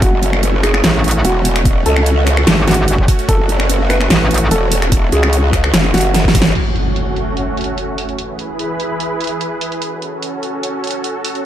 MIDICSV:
0, 0, Header, 1, 7, 480
1, 0, Start_track
1, 0, Key_signature, 3, "minor"
1, 0, Tempo, 408163
1, 26, Time_signature, 4, 2, 24, 8
1, 13473, End_track
2, 0, Start_track
2, 0, Title_t, "Felt piano"
2, 0, Program_c, 0, 0
2, 26, Note_on_c, 0, 66, 97
2, 654, Note_off_c, 0, 66, 0
2, 746, Note_on_c, 0, 68, 94
2, 1374, Note_off_c, 0, 68, 0
2, 1466, Note_on_c, 0, 66, 95
2, 2094, Note_off_c, 0, 66, 0
2, 2185, Note_on_c, 0, 69, 100
2, 3054, Note_off_c, 0, 69, 0
2, 3146, Note_on_c, 0, 66, 100
2, 3774, Note_off_c, 0, 66, 0
2, 3866, Note_on_c, 0, 69, 98
2, 4494, Note_off_c, 0, 69, 0
2, 4587, Note_on_c, 0, 71, 94
2, 5214, Note_off_c, 0, 71, 0
2, 5307, Note_on_c, 0, 69, 95
2, 5934, Note_off_c, 0, 69, 0
2, 6027, Note_on_c, 0, 68, 98
2, 6894, Note_off_c, 0, 68, 0
2, 6986, Note_on_c, 0, 66, 99
2, 7614, Note_off_c, 0, 66, 0
2, 13473, End_track
3, 0, Start_track
3, 0, Title_t, "Supersaw synth"
3, 0, Program_c, 1, 81
3, 0, Note_on_c, 1, 57, 82
3, 0, Note_on_c, 1, 61, 69
3, 26, Note_on_c, 1, 66, 89
3, 7658, Note_off_c, 1, 57, 0
3, 7658, Note_off_c, 1, 61, 0
3, 7684, Note_off_c, 1, 66, 0
3, 7705, Note_on_c, 1, 61, 69
3, 7705, Note_on_c, 1, 66, 85
3, 7706, Note_on_c, 1, 57, 74
3, 9606, Note_off_c, 1, 61, 0
3, 9606, Note_off_c, 1, 66, 0
3, 9607, Note_off_c, 1, 57, 0
3, 9626, Note_on_c, 1, 64, 69
3, 9626, Note_on_c, 1, 68, 68
3, 9626, Note_on_c, 1, 71, 69
3, 9626, Note_on_c, 1, 83, 82
3, 9627, Note_on_c, 1, 52, 74
3, 11527, Note_off_c, 1, 52, 0
3, 11527, Note_off_c, 1, 64, 0
3, 11527, Note_off_c, 1, 68, 0
3, 11527, Note_off_c, 1, 71, 0
3, 11527, Note_off_c, 1, 83, 0
3, 11545, Note_on_c, 1, 66, 69
3, 11546, Note_on_c, 1, 61, 74
3, 11546, Note_on_c, 1, 69, 85
3, 13446, Note_off_c, 1, 61, 0
3, 13473, Note_off_c, 1, 66, 0
3, 13473, Note_off_c, 1, 69, 0
3, 13473, End_track
4, 0, Start_track
4, 0, Title_t, "Wobble bass"
4, 0, Program_c, 2, 39
4, 985, Note_on_c, 2, 33, 93
4, 1447, Note_off_c, 2, 33, 0
4, 2906, Note_on_c, 2, 32, 99
4, 3400, Note_off_c, 2, 32, 0
4, 3400, Note_on_c, 2, 31, 99
4, 3607, Note_off_c, 2, 31, 0
4, 4825, Note_on_c, 2, 33, 96
4, 5287, Note_off_c, 2, 33, 0
4, 13473, End_track
5, 0, Start_track
5, 0, Title_t, "Wobble bass"
5, 0, Program_c, 3, 39
5, 25, Note_on_c, 3, 30, 98
5, 967, Note_off_c, 3, 30, 0
5, 1466, Note_on_c, 3, 28, 99
5, 2167, Note_off_c, 3, 28, 0
5, 2185, Note_on_c, 3, 37, 98
5, 2887, Note_off_c, 3, 37, 0
5, 3865, Note_on_c, 3, 30, 97
5, 4807, Note_off_c, 3, 30, 0
5, 5305, Note_on_c, 3, 28, 101
5, 6007, Note_off_c, 3, 28, 0
5, 6025, Note_on_c, 3, 37, 104
5, 6727, Note_off_c, 3, 37, 0
5, 6745, Note_on_c, 3, 30, 96
5, 6967, Note_off_c, 3, 30, 0
5, 6985, Note_on_c, 3, 30, 102
5, 7447, Note_off_c, 3, 30, 0
5, 7465, Note_on_c, 3, 32, 101
5, 7687, Note_off_c, 3, 32, 0
5, 13473, End_track
6, 0, Start_track
6, 0, Title_t, "Impact"
6, 0, Program_c, 4, 103
6, 7705, Note_on_c, 4, 60, 67
6, 9625, Note_off_c, 4, 60, 0
6, 13473, End_track
7, 0, Start_track
7, 0, Title_t, "Drums"
7, 25, Note_on_c, 9, 36, 122
7, 26, Note_on_c, 9, 42, 81
7, 143, Note_off_c, 9, 36, 0
7, 143, Note_off_c, 9, 42, 0
7, 266, Note_on_c, 9, 42, 53
7, 383, Note_off_c, 9, 42, 0
7, 391, Note_on_c, 9, 26, 54
7, 506, Note_on_c, 9, 42, 77
7, 508, Note_off_c, 9, 26, 0
7, 623, Note_off_c, 9, 42, 0
7, 746, Note_on_c, 9, 26, 57
7, 746, Note_on_c, 9, 42, 52
7, 863, Note_off_c, 9, 26, 0
7, 863, Note_off_c, 9, 42, 0
7, 871, Note_on_c, 9, 26, 54
7, 985, Note_on_c, 9, 38, 123
7, 985, Note_on_c, 9, 42, 80
7, 988, Note_off_c, 9, 26, 0
7, 1103, Note_off_c, 9, 38, 0
7, 1103, Note_off_c, 9, 42, 0
7, 1226, Note_on_c, 9, 42, 45
7, 1268, Note_off_c, 9, 42, 0
7, 1268, Note_on_c, 9, 42, 60
7, 1306, Note_off_c, 9, 42, 0
7, 1306, Note_on_c, 9, 42, 75
7, 1423, Note_off_c, 9, 42, 0
7, 1465, Note_on_c, 9, 42, 76
7, 1583, Note_off_c, 9, 42, 0
7, 1705, Note_on_c, 9, 46, 95
7, 1823, Note_off_c, 9, 46, 0
7, 1831, Note_on_c, 9, 26, 61
7, 1831, Note_on_c, 9, 42, 36
7, 1945, Note_on_c, 9, 36, 111
7, 1946, Note_off_c, 9, 42, 0
7, 1946, Note_on_c, 9, 42, 81
7, 1949, Note_off_c, 9, 26, 0
7, 2063, Note_off_c, 9, 36, 0
7, 2063, Note_off_c, 9, 42, 0
7, 2186, Note_on_c, 9, 42, 53
7, 2303, Note_off_c, 9, 42, 0
7, 2311, Note_on_c, 9, 26, 58
7, 2426, Note_on_c, 9, 42, 75
7, 2428, Note_off_c, 9, 26, 0
7, 2543, Note_off_c, 9, 42, 0
7, 2666, Note_on_c, 9, 26, 54
7, 2666, Note_on_c, 9, 42, 52
7, 2783, Note_off_c, 9, 26, 0
7, 2783, Note_off_c, 9, 42, 0
7, 2791, Note_on_c, 9, 26, 59
7, 2905, Note_on_c, 9, 38, 121
7, 2905, Note_on_c, 9, 42, 81
7, 2908, Note_off_c, 9, 26, 0
7, 3023, Note_off_c, 9, 38, 0
7, 3023, Note_off_c, 9, 42, 0
7, 3146, Note_on_c, 9, 38, 61
7, 3146, Note_on_c, 9, 42, 47
7, 3187, Note_off_c, 9, 42, 0
7, 3187, Note_on_c, 9, 42, 58
7, 3226, Note_off_c, 9, 42, 0
7, 3226, Note_on_c, 9, 42, 75
7, 3263, Note_off_c, 9, 38, 0
7, 3343, Note_off_c, 9, 42, 0
7, 3385, Note_on_c, 9, 42, 74
7, 3503, Note_off_c, 9, 42, 0
7, 3510, Note_on_c, 9, 36, 61
7, 3625, Note_off_c, 9, 36, 0
7, 3625, Note_on_c, 9, 36, 104
7, 3625, Note_on_c, 9, 46, 95
7, 3743, Note_off_c, 9, 36, 0
7, 3743, Note_off_c, 9, 46, 0
7, 3751, Note_on_c, 9, 42, 36
7, 3865, Note_on_c, 9, 36, 115
7, 3866, Note_off_c, 9, 42, 0
7, 3866, Note_on_c, 9, 42, 82
7, 3982, Note_off_c, 9, 36, 0
7, 3983, Note_off_c, 9, 42, 0
7, 4106, Note_on_c, 9, 42, 53
7, 4223, Note_off_c, 9, 42, 0
7, 4230, Note_on_c, 9, 26, 58
7, 4346, Note_on_c, 9, 42, 81
7, 4348, Note_off_c, 9, 26, 0
7, 4463, Note_off_c, 9, 42, 0
7, 4586, Note_on_c, 9, 26, 58
7, 4586, Note_on_c, 9, 42, 54
7, 4704, Note_off_c, 9, 26, 0
7, 4704, Note_off_c, 9, 42, 0
7, 4711, Note_on_c, 9, 26, 58
7, 4826, Note_on_c, 9, 38, 116
7, 4826, Note_on_c, 9, 42, 77
7, 4828, Note_off_c, 9, 26, 0
7, 4943, Note_off_c, 9, 38, 0
7, 4943, Note_off_c, 9, 42, 0
7, 5066, Note_on_c, 9, 42, 48
7, 5108, Note_off_c, 9, 42, 0
7, 5108, Note_on_c, 9, 42, 62
7, 5146, Note_off_c, 9, 42, 0
7, 5146, Note_on_c, 9, 42, 76
7, 5264, Note_off_c, 9, 42, 0
7, 5306, Note_on_c, 9, 42, 78
7, 5424, Note_off_c, 9, 42, 0
7, 5546, Note_on_c, 9, 46, 105
7, 5663, Note_off_c, 9, 46, 0
7, 5671, Note_on_c, 9, 26, 64
7, 5671, Note_on_c, 9, 42, 36
7, 5785, Note_on_c, 9, 36, 116
7, 5786, Note_off_c, 9, 42, 0
7, 5786, Note_on_c, 9, 42, 85
7, 5789, Note_off_c, 9, 26, 0
7, 5903, Note_off_c, 9, 36, 0
7, 5903, Note_off_c, 9, 42, 0
7, 6026, Note_on_c, 9, 42, 57
7, 6143, Note_off_c, 9, 42, 0
7, 6151, Note_on_c, 9, 26, 59
7, 6266, Note_on_c, 9, 42, 78
7, 6269, Note_off_c, 9, 26, 0
7, 6383, Note_off_c, 9, 42, 0
7, 6505, Note_on_c, 9, 36, 63
7, 6506, Note_on_c, 9, 26, 57
7, 6506, Note_on_c, 9, 42, 53
7, 6623, Note_off_c, 9, 26, 0
7, 6623, Note_off_c, 9, 36, 0
7, 6623, Note_off_c, 9, 42, 0
7, 6631, Note_on_c, 9, 26, 58
7, 6746, Note_on_c, 9, 38, 117
7, 6746, Note_on_c, 9, 42, 86
7, 6748, Note_off_c, 9, 26, 0
7, 6864, Note_off_c, 9, 38, 0
7, 6864, Note_off_c, 9, 42, 0
7, 6986, Note_on_c, 9, 38, 58
7, 6986, Note_on_c, 9, 42, 49
7, 7027, Note_off_c, 9, 42, 0
7, 7027, Note_on_c, 9, 42, 64
7, 7066, Note_off_c, 9, 42, 0
7, 7066, Note_on_c, 9, 42, 80
7, 7104, Note_off_c, 9, 38, 0
7, 7183, Note_off_c, 9, 42, 0
7, 7226, Note_on_c, 9, 38, 67
7, 7226, Note_on_c, 9, 42, 81
7, 7343, Note_off_c, 9, 38, 0
7, 7343, Note_off_c, 9, 42, 0
7, 7350, Note_on_c, 9, 36, 62
7, 7386, Note_on_c, 9, 38, 83
7, 7465, Note_off_c, 9, 36, 0
7, 7465, Note_on_c, 9, 36, 106
7, 7466, Note_on_c, 9, 46, 105
7, 7504, Note_off_c, 9, 38, 0
7, 7546, Note_on_c, 9, 38, 105
7, 7583, Note_off_c, 9, 36, 0
7, 7584, Note_off_c, 9, 46, 0
7, 7591, Note_on_c, 9, 42, 37
7, 7664, Note_off_c, 9, 38, 0
7, 7706, Note_off_c, 9, 42, 0
7, 7706, Note_on_c, 9, 42, 83
7, 7706, Note_on_c, 9, 49, 81
7, 7823, Note_off_c, 9, 42, 0
7, 7823, Note_off_c, 9, 49, 0
7, 7945, Note_on_c, 9, 42, 57
7, 8063, Note_off_c, 9, 42, 0
7, 8185, Note_on_c, 9, 42, 73
7, 8303, Note_off_c, 9, 42, 0
7, 8425, Note_on_c, 9, 42, 52
7, 8543, Note_off_c, 9, 42, 0
7, 8666, Note_on_c, 9, 42, 80
7, 8783, Note_off_c, 9, 42, 0
7, 8906, Note_on_c, 9, 42, 47
7, 8947, Note_off_c, 9, 42, 0
7, 8947, Note_on_c, 9, 42, 63
7, 8986, Note_off_c, 9, 42, 0
7, 8986, Note_on_c, 9, 42, 78
7, 9103, Note_off_c, 9, 42, 0
7, 9146, Note_on_c, 9, 42, 80
7, 9263, Note_off_c, 9, 42, 0
7, 9386, Note_on_c, 9, 46, 91
7, 9503, Note_off_c, 9, 46, 0
7, 9511, Note_on_c, 9, 42, 36
7, 9626, Note_off_c, 9, 42, 0
7, 9626, Note_on_c, 9, 42, 78
7, 9743, Note_off_c, 9, 42, 0
7, 9866, Note_on_c, 9, 42, 55
7, 9983, Note_off_c, 9, 42, 0
7, 10106, Note_on_c, 9, 42, 74
7, 10223, Note_off_c, 9, 42, 0
7, 10345, Note_on_c, 9, 42, 53
7, 10463, Note_off_c, 9, 42, 0
7, 10586, Note_on_c, 9, 42, 83
7, 10703, Note_off_c, 9, 42, 0
7, 10825, Note_on_c, 9, 42, 46
7, 10867, Note_off_c, 9, 42, 0
7, 10867, Note_on_c, 9, 42, 61
7, 10905, Note_off_c, 9, 42, 0
7, 10905, Note_on_c, 9, 42, 75
7, 11023, Note_off_c, 9, 42, 0
7, 11065, Note_on_c, 9, 42, 78
7, 11182, Note_off_c, 9, 42, 0
7, 11305, Note_on_c, 9, 46, 93
7, 11422, Note_off_c, 9, 46, 0
7, 11430, Note_on_c, 9, 42, 37
7, 11545, Note_off_c, 9, 42, 0
7, 11545, Note_on_c, 9, 42, 79
7, 11663, Note_off_c, 9, 42, 0
7, 11785, Note_on_c, 9, 42, 51
7, 11903, Note_off_c, 9, 42, 0
7, 12025, Note_on_c, 9, 42, 75
7, 12142, Note_off_c, 9, 42, 0
7, 12265, Note_on_c, 9, 42, 51
7, 12382, Note_off_c, 9, 42, 0
7, 12505, Note_on_c, 9, 42, 77
7, 12622, Note_off_c, 9, 42, 0
7, 12745, Note_on_c, 9, 42, 46
7, 12787, Note_off_c, 9, 42, 0
7, 12787, Note_on_c, 9, 42, 58
7, 12825, Note_off_c, 9, 42, 0
7, 12825, Note_on_c, 9, 42, 73
7, 12943, Note_off_c, 9, 42, 0
7, 12985, Note_on_c, 9, 42, 75
7, 13102, Note_off_c, 9, 42, 0
7, 13225, Note_on_c, 9, 46, 86
7, 13342, Note_off_c, 9, 46, 0
7, 13350, Note_on_c, 9, 42, 36
7, 13467, Note_off_c, 9, 42, 0
7, 13473, End_track
0, 0, End_of_file